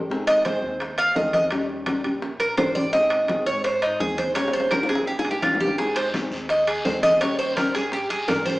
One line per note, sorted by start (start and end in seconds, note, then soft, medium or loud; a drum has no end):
0.00 0.57 G#1 medium
0.09 0.44 D#3 medium
0.09 0.45 G#3 medium
0.09 0.45 C4 medium
0.09 0.45 D#4 medium
0.09 0.45 G#4 medium
0.09 high bongo medium
0.09 high conga soft
0.27 0.45 D#5 loud
0.27 high bongo soft
0.27 high conga soft
0.27 high timbale medium
0.45 0.62 D#3 medium
0.45 0.63 G#3 medium
0.45 0.63 C4 medium
0.45 0.62 D#4 medium
0.45 0.61 G#4 medium
0.45 0.95 C5 medium
0.45 high bongo medium
0.45 high conga medium
0.45 high timbale medium
0.62 1.12 D#2 medium
0.62 0.79 C4 soft
0.62 0.79 D#4 soft
0.62 0.79 G#4 soft
0.80 muted nylon-string guitar stroke medium
0.80 high bongo medium
0.80 high conga soft
0.80 high timbale medium
0.98 1.16 F5 loud
0.98 high bongo soft
0.98 high conga soft
0.98 high timbale medium
1.16 1.99 D#2 medium
1.16 1.33 D#3 medium
1.16 1.33 G#3 medium
1.16 1.33 C4 medium
1.16 1.33 D#4 medium
1.16 1.32 G#4 medium
1.16 1.33 D#5 medium
1.16 high bongo soft
1.16 low bongo medium
1.16 high conga medium
1.16 low timbale medium
1.33 1.51 C4 soft
1.33 1.51 D#4 soft
1.33 1.51 G#4 soft
1.33 1.44 D#5 medium
1.33 high bongo soft
1.33 high conga medium
1.33 high timbale medium
1.51 1.85 D#3 medium
1.51 1.86 G3 medium
1.51 1.87 C#4 medium
1.51 1.87 G4 medium
1.51 high bongo medium
1.51 high timbale medium
1.69 high bongo soft
1.69 high conga soft
1.86 2.04 D#3 medium
1.86 2.04 G3 medium
1.86 2.04 C#4 medium
1.86 2.03 G4 medium
1.86 high bongo medium
1.86 high conga loud
1.86 high timbale medium
2.04 2.38 A#1 loud
2.04 2.21 G3 soft
2.04 2.21 C#4 soft
2.04 2.22 G4 soft
2.04 high conga soft
2.04 high timbale medium
2.22 muted nylon-string guitar stroke medium
2.22 high bongo medium
2.22 high conga soft
2.40 2.57 A#1 medium
2.40 2.57 A#4 medium
2.40 high bongo soft
2.40 high conga soft
2.40 high timbale medium
2.57 3.41 G#1 medium
2.57 2.75 D#3 medium
2.57 2.75 G3 medium
2.57 2.75 C#4 medium
2.57 2.74 G4 medium
2.57 2.75 C5 medium
2.57 high bongo soft
2.57 low bongo medium
2.57 high conga medium
2.57 high timbale loud
2.57 low timbale medium
2.75 2.93 G3 soft
2.75 2.93 C#4 soft
2.75 2.93 G4 soft
2.75 2.93 D5 medium
2.75 high bongo soft
2.75 high conga medium
2.92 3.27 D#3 medium
2.92 3.27 G#3 medium
2.92 3.27 C4 medium
2.92 3.28 D#4 medium
2.92 3.28 G#4 medium
2.92 3.43 D#5 loud
2.92 high bongo medium
2.92 high conga soft
3.10 high bongo soft
3.10 high conga soft
3.10 high timbale loud
3.28 3.46 D#3 medium
3.28 3.46 G#3 medium
3.28 3.46 C4 medium
3.28 3.46 D#4 medium
3.28 3.45 G#4 medium
3.28 high bongo medium
3.28 high conga loud
3.28 high timbale medium
3.46 3.96 G#2 loud
3.46 3.63 G#4 medium
3.46 3.64 C#5 loud
3.64 3.82 C5 medium
3.64 muted nylon-string guitar stroke medium
3.64 high bongo medium
3.64 high conga soft
3.64 high timbale medium
3.82 4.00 D#4 medium
3.82 high bongo soft
3.82 high conga soft
3.82 high timbale medium
3.99 4.83 D#2 medium
3.99 4.17 D#3 medium
3.99 4.17 G#3 medium
3.99 4.17 C4 medium
3.99 4.17 D#4 medium
3.99 4.18 G#4 medium
3.99 4.17 G#4 medium
3.99 high bongo soft
3.99 low bongo medium
3.99 high conga medium
4.18 4.35 C4 soft
4.18 4.36 D#4 soft
4.18 4.35 G#4 soft
4.18 4.35 C5 medium
4.18 high bongo soft
4.18 high conga medium
4.18 high timbale medium
4.35 4.69 D#3 medium
4.35 4.70 G3 medium
4.35 4.70 C#4 medium
4.35 4.71 G4 medium
4.35 4.53 C#5 loud
4.35 high bongo loud
4.35 high conga soft
4.35 high timbale medium
4.48 high bongo medium
4.53 4.71 C5 medium
4.53 high conga soft
4.60 high bongo loud
4.70 4.88 D#3 medium
4.70 4.88 G3 medium
4.70 4.89 C#4 medium
4.70 4.87 G4 medium
4.70 4.89 A#4 medium
4.70 low bongo medium
4.70 high conga medium
4.70 high timbale medium
4.83 low bongo medium
4.88 5.22 A#1 medium
4.88 5.06 G3 soft
4.88 5.07 C#4 soft
4.88 5.06 G4 soft
4.88 5.06 G#4 medium
4.88 high conga soft
4.88 high timbale medium
4.95 high bongo medium
5.07 5.18 G4 medium
5.07 muted nylon-string guitar stroke medium
5.07 high conga soft
5.19 5.30 G#4 medium
5.19 low bongo medium
5.24 5.41 A#1 medium
5.24 high conga soft
5.24 high timbale medium
5.31 5.42 G4 medium
5.31 low bongo medium
5.42 6.26 G#1 medium
5.42 5.59 D#3 medium
5.42 5.60 G3 medium
5.42 5.60 C#4 medium
5.42 5.60 F4 medium
5.42 5.59 G4 medium
5.42 low bongo medium
5.42 high conga medium
5.42 high timbale medium
5.55 low bongo medium
5.60 5.78 G3 soft
5.60 5.78 C#4 soft
5.60 5.77 G4 medium
5.60 5.78 G4 medium
5.60 high conga medium
5.67 low bongo medium
5.78 6.12 D#3 medium
5.78 6.12 G#3 medium
5.78 6.13 C4 medium
5.78 6.13 D#4 medium
5.78 5.96 G#4 medium
5.78 6.14 G#4 medium
5.78 high bongo medium
5.78 high conga soft
5.78 long guiro medium
5.96 6.07 C5 medium
5.96 high bongo soft
5.96 high conga soft
5.96 high timbale medium
6.13 6.31 D#3 medium
6.13 6.31 G#3 medium
6.13 6.31 C4 medium
6.13 6.30 D#4 medium
6.13 6.30 G#4 medium
6.13 high bongo medium
6.13 high conga medium
6.13 high timbale medium
6.13 short guiro medium
6.31 6.81 D#2 medium
6.31 6.48 C4 soft
6.31 6.48 D#4 soft
6.31 6.49 G#4 soft
6.31 short guiro medium
6.49 6.67 D#5 medium
6.49 muted nylon-string guitar stroke medium
6.49 high bongo medium
6.49 high conga soft
6.49 high timbale medium
6.49 long guiro medium
6.67 6.85 G#4 medium
6.67 high bongo soft
6.67 high conga soft
6.67 high timbale loud
6.85 7.68 D#2 medium
6.85 7.02 D#3 medium
6.85 7.03 G#3 medium
6.85 7.03 C4 medium
6.85 7.02 D#4 medium
6.85 7.02 G#4 medium
6.85 7.02 C5 medium
6.85 high bongo soft
6.85 low bongo medium
6.85 high conga medium
6.85 low timbale medium
6.85 short guiro medium
7.03 7.21 C4 soft
7.03 7.20 D#4 soft
7.03 7.20 G#4 soft
7.03 7.20 D#5 loud
7.03 high bongo soft
7.03 high conga medium
7.03 high timbale medium
7.03 short guiro medium
7.21 7.55 D#3 medium
7.21 7.56 G3 medium
7.21 7.56 C#4 medium
7.21 7.57 G4 medium
7.21 7.38 C#5 medium
7.21 high bongo medium
7.21 high conga soft
7.21 high timbale medium
7.21 long guiro medium
7.39 7.56 C5 medium
7.39 high bongo soft
7.39 high conga soft
7.57 7.74 D#3 medium
7.57 7.74 G3 medium
7.57 7.74 C#4 medium
7.57 7.73 G4 medium
7.57 7.74 A#4 medium
7.57 high bongo medium
7.57 high conga loud
7.57 high timbale medium
7.57 short guiro medium
7.74 8.07 G2 medium
7.74 7.91 G3 soft
7.74 7.91 C#4 soft
7.74 7.91 G4 soft
7.74 7.92 G#4 medium
7.74 high conga soft
7.74 high timbale medium
7.74 short guiro medium
7.92 8.10 G4 medium
7.92 muted nylon-string guitar stroke medium
7.92 high bongo medium
7.92 high conga soft
7.92 long guiro medium
8.10 8.27 G2 medium
8.10 8.27 G#4 medium
8.10 high bongo soft
8.10 high conga soft
8.10 high timbale medium
8.27 8.60 G#2 medium
8.27 8.45 D#3 medium
8.27 8.45 G3 medium
8.27 8.45 C#4 medium
8.27 8.45 G4 medium
8.27 8.45 A#4 medium
8.27 high bongo soft
8.27 low bongo medium
8.27 high conga medium
8.27 high timbale medium
8.27 low timbale medium
8.27 short guiro medium
8.46 8.60 G3 soft
8.46 8.60 C#4 soft
8.46 8.60 G4 soft
8.46 8.60 C5 medium
8.46 high bongo soft
8.46 high conga medium
8.46 short guiro medium